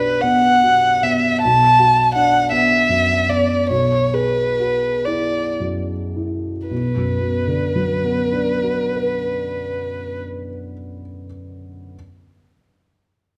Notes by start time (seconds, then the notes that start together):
Already playing: B1 D4 G4 B4
0.21 B3 F#5
0.63 B2
1.03 B3 E5
1.42 B1 A5
1.79 F#4
2.15 D4 F#5
2.52 B3 E5
2.89 F#2
3.29 B3 D5
3.69 B1 C#5
4.14 G#4 B4
4.60 F#4
5.05 E4 D5
5.60 F#2
6.16 E4
6.67 B1 B4
6.96 F#2
7.21 B2
7.47 D3
7.76 F#3
8.04 B3
8.32 D4
8.63 F#4
8.96 B4